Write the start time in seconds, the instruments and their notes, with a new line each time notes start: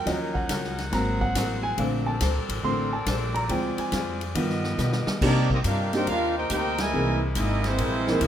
Already playing: saxophone section A#4
0.05 upright bass D#2, hollow-body jazz guitar D#3 C#4 F#4, grand piano F3 F#3 C#4 D#5, saxophone section D#4 C#5 F#5, kick, snare, ride
0.09 hollow-body jazz guitar A#4
0.34 grand piano F#5, kick
0.49 upright bass C#2, hollow-body jazz guitar D#3 C#4 F#4 A#4, kick, snare, hi-hat pedal, ride
0.64 snare
0.78 snare, ride
0.92 upright bass G#1, grand piano F#3 A#3 C4 A#5, hollow-body jazz guitar G#3 C4 F#4 A#4, saxophone section C4 G#4 A#4, kick, snare, ride
1.21 grand piano F#5, kick
1.35 upright bass A1, hollow-body jazz guitar G#3 C4 F#4 A#4, kick, snare, hi-hat pedal, ride
1.63 grand piano G#5
1.77 upright bass A#1, grand piano D3 A3 C4 F5, hollow-body jazz guitar A#3 D4 A4, saxophone section A4 D5, kick, ride
1.82 hollow-body jazz guitar C5
2.07 grand piano A5
2.20 upright bass D2, hollow-body jazz guitar A#3 D4 A4 C5, kick, snare, hi-hat pedal, ride
2.35 upright bass A#1
2.49 upright bass A1, ride
2.63 upright bass A1, grand piano D3 A3 C4 C6, hollow-body jazz guitar A#3 D4 A4 C5, kick
2.93 grand piano A5
3.06 upright bass A#1, hollow-body jazz guitar A#3 D4 A4 C5, kick, snare, hi-hat pedal, ride
3.35 grand piano A#5, ride
3.49 upright bass D2, hollow-body jazz guitar D3 C4 F4 G#4, grand piano F3 G#3 C4 G5, saxophone section F4 G#4, kick, ride
3.77 grand piano G#5, muted upright bass stroke, ride
3.92 upright bass F2, hollow-body jazz guitar D3 C4 F4 G#4, kick, snare, hi-hat pedal, ride
4.21 ride
4.34 upright bass G2, grand piano D#3 F3 B3, hollow-body jazz guitar G3 F4 B4 D#5, saxophone section B3 F4 G4 D#5, kick, ride
4.50 snare
4.64 snare
4.78 upright bass B2, hollow-body jazz guitar G3 F4 B4 D#5, snare, hi-hat pedal
4.93 snare
5.07 muted upright bass stroke, snare
5.20 upright bass C3, hollow-body jazz guitar C3 G3 A#3, saxophone section A#3 C4 D#4 G4, grand piano A#3 C4 D4 D#4 G4, trombone section D4, kick, snare, crash
5.24 trumpet section A#3 D#4 G4 D5, hollow-body jazz guitar D#4
5.50 trombone section G3 A#3 D#4, trumpet section C4 G4 A#4 D#5, kick
5.64 upright bass G2, hollow-body jazz guitar C3 G3 A#3 D#4, trumpet section D4 G4 A#4 F5, trombone section F4, kick, hi-hat pedal, ride
5.93 grand piano A#3 C4 D4 D#4 G4, trombone section A#3 D#4 G4, trumpet section D#4 A#4 C5 G5, snare, ride
6.07 upright bass D#2, hollow-body jazz guitar C3 G3 A#3 D#4, trumpet section D4 G4 A#4 F5, trombone section F4, kick, ride
6.37 trombone section A#3 D#4 G4, trumpet section D#4 A#4 C5 G5
6.50 upright bass D2, hollow-body jazz guitar C3 G3 A#3 D#4, trombone section A#3 D#4 G4, trumpet section D#4 A#4 C5 G5, kick, hi-hat pedal, ride
6.78 trombone section A#2 E3 G#3, trumpet section E4 A#4 D#5 G#5, snare, ride
6.92 upright bass C2, saxophone section C3 G#3 A#3 E4, hollow-body jazz guitar C3 G#3 A#3 E4, grand piano E3 A#3 C4 D#4 G#4
7.35 upright bass G#1, hollow-body jazz guitar C3 G#3 A#3 E4, trombone section G#3 A#3 D#4, trumpet section A#3 E4 G#4 D#5, kick, hi-hat pedal, ride
7.64 trombone section E3 G#3 C4, trumpet section A#3 E4 G#4 C5, snare, ride
7.78 upright bass A#1, hollow-body jazz guitar C3 G#3 A#3 E4, kick, ride
8.07 grand piano E3 A#3 C4 D#4 A#4, snare
8.21 upright bass C2, hollow-body jazz guitar C3 G#3 A#3 E4, trombone section G#3 A#3 E4, trumpet section A#3 E4 G#4 D#5, kick, hi-hat pedal, ride